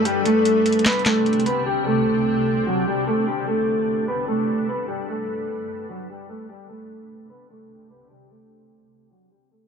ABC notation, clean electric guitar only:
X:1
M:4/4
L:1/8
Q:1/4=149
K:Clyd
V:1 name="Clean electric guitar"
[G,G] [A,A]3 [B,B] [A,A]2 [B,B] | [G,G] [A,A]4 [F,F] [G,G] [A,A] | [G,G] [A,A]3 [B,B] [A,A]2 [B,B] | [G,G] [A,A]4 [F,F] [G,G] [A,A] |
[G,G] [A,A]3 [B,B] [A,A]2 [B,B] | [G,G] [A,A]4 [F,F] [G,G] [A,A] |]